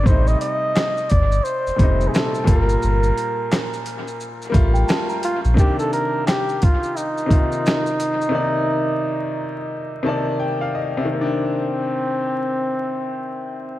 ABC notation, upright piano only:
X:1
M:4/4
L:1/16
Q:"Swing 16ths" 1/4=87
K:Cdor
V:1 name="Upright piano"
z16 | z16 | z16 | z8 z2 a2 g f e2 |
z16 |]
V:2 name="Upright piano"
[C,G,A,E]8 z2 [B,,C,G,A,E]4 [B,,G,B,F]2- | [B,,G,B,F]6 z4 [G,A,B,F]6 | [C,E,B,D]8 z2 [C,E,B,F]6 | [C,E,B,d]8 z2 [C,E,B,d]6 |
[C,E,B,D]16 |]